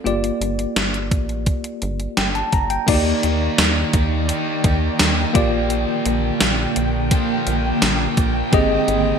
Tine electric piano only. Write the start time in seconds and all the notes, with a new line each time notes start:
0.04 A#3 F4 G4 D5
2.17 G5
2.35 A5
2.53 A#5
2.70 G5
2.86 A#3 D#4 F#4 D5
2.94 G4
5.34 A#3 F4 G4 D5
8.52 C4 G4 G#4 D#5